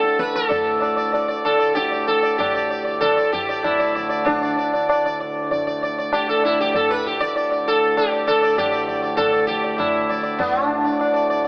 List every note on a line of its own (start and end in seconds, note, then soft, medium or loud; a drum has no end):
0.00 10.38 D2 medium
0.00 10.39 A2 medium
0.00 0.20 A4 loud
0.00 tabla te medium
0.19 0.35 B4 loud
0.19 tabla ke medium
0.35 1.25 A4 loud
0.35 tabla te medium
0.49 0.79 D5 soft
0.49 tabla tin medium
0.49 tabla ge medium
0.80 0.95 D5 soft
0.80 tabla na medium
0.96 1.11 D5 soft
1.12 1.27 D5 soft
1.12 tabla tin medium
1.28 1.58 D5 soft
1.45 1.74 A4 medium
1.45 tabla na medium
1.59 1.89 D5 soft
1.75 2.07 G4 loud
1.75 tabla te medium
1.91 2.21 D5 soft
2.07 2.38 A4 medium
2.07 tabla te medium
2.23 2.52 D5 soft
2.38 3.00 G4 medium
2.38 tabla na medium
2.38 tabla ge medium
2.54 2.69 D5 soft
2.70 2.83 D5 soft
2.85 3.14 D5 soft
3.01 3.32 A4 medium
3.01 tabla na medium
3.01 tabla ge medium
3.17 3.46 D5 soft
3.33 3.64 G4 medium
3.33 tabla ge medium
3.49 3.77 D5 soft
3.64 4.28 E4 medium
3.64 tabla na medium
3.64 tabla ge medium
3.79 3.94 D5 soft
3.95 4.08 D5 soft
3.95 tabla ge medium
4.09 4.39 D5 soft
4.25 5.15 D4 medium
4.25 tabla tin loud
4.25 tabla ge loud
4.42 4.56 D5 soft
4.58 4.72 D5 soft
4.74 4.88 D5 soft
4.89 5.04 D5 soft
4.89 tabla na medium
5.05 5.19 D5 soft
5.20 5.49 D5 soft
5.51 5.66 D5 soft
5.51 tabla tin medium
5.51 tabla ge medium
5.67 5.82 D5 soft
5.83 5.97 D5 soft
5.99 6.26 D5 soft
6.13 6.28 G4 medium
6.13 tabla na medium
6.29 6.44 A4 medium
6.44 6.60 E4 medium
6.44 tabla na medium
6.61 6.75 G4 medium
6.74 6.90 A4 medium
6.74 tabla tin medium
6.74 tabla ge medium
6.90 7.05 B4 medium
7.07 7.21 G4 medium
7.20 7.34 D5 medium
7.36 7.50 D5 soft
7.36 tabla tin medium
7.52 7.79 D5 soft
7.68 7.95 A4 loud
7.97 8.27 G4 loud
7.97 tabla na medium
8.12 8.40 D5 soft
8.27 8.58 A4 loud
8.27 tabla na medium
8.42 8.70 D5 soft
8.58 9.16 G4 loud
8.58 tabla na medium
8.58 tabla ge medium
8.71 8.86 D5 soft
8.88 9.01 D5 soft
8.88 tabla ge medium
9.03 9.31 D5 soft
9.17 9.47 A4 loud
9.17 tabla na medium
9.17 tabla ge medium
9.32 9.61 D5 soft
9.47 9.78 G4 medium
9.47 tabla ge medium
9.64 9.92 D5 soft
9.78 10.41 E4 medium
9.78 tabla na medium
9.78 tabla ge medium
10.09 10.22 D5 soft
10.09 tabla ge medium
10.23 10.52 D5 soft
10.38 11.48 D2 medium
10.38 11.48 A2 medium
10.38 10.66 B3 medium
10.38 tabla tin loud
10.38 tabla ge loud
10.66 11.25 D4 medium
10.84 10.98 D5 soft
10.99 11.13 D5 soft
10.99 tabla na medium
11.14 11.29 D5 soft
11.30 11.43 D5 soft
11.44 11.48 D5 soft